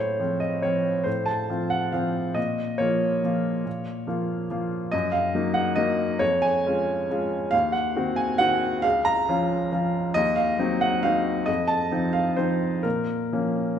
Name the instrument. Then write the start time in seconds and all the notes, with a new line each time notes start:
upright piano
Already playing: A2 C5 C#5
0.20 F3 C4 F4
0.40 D#5
0.62 F3 C4 F4 C#5
1.04 A2 C5
1.26 A5
1.50 F3 C4 F4
1.70 F#5
1.92 F3 C4 F4 F5
2.34 A#2 D#5
2.78 F3 A#3 F4 C#5
3.24 F3 A#3 F4
3.66 A#2
4.07 F3 A#3 F4
4.50 F3 A#3 F4
4.91 F#2 D#5
5.12 F5
5.35 F#3 A#3 D#4
5.54 F#5
5.76 F#3 A#3 D#4 D#5
6.19 F2 C#5
6.42 G#5
6.66 G#3 C#4 F4
7.11 G#3 C#4 F4
7.51 D#2 F5
7.72 F#5
7.96 D#3 C4 F#4
8.16 G#5
8.38 D#3 C4 F#4 F#5
8.82 C#2 F5
9.05 A#5
9.29 F3 C#4 F4
9.72 F3 C#4 F4
10.14 D#2 D#5
10.36 F5
10.59 F#3 C4 D#4
10.81 F#5
11.03 F#3 C4 D#4 F5
11.46 F2 D#5
11.67 A5
11.91 F3 C4 D#4
12.13 F5
12.37 F3 C4 D#4 C5
12.83 A#2 A#4
13.32 F3 A#3 C#4